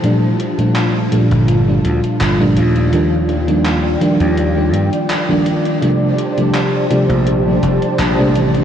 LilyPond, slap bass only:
\new Staff \with { instrumentName = "Slap bass" } { \clef bass \time 4/4 \key g \minor \tempo 4 = 83 r4. r16 g,,8. d,16 r16 g,,8 ees,8~ | ees,4. r16 ees,8. g,16 r4 r16 | r4. r16 bes,,8. f,,16 r16 bes,,8 a,,8 | }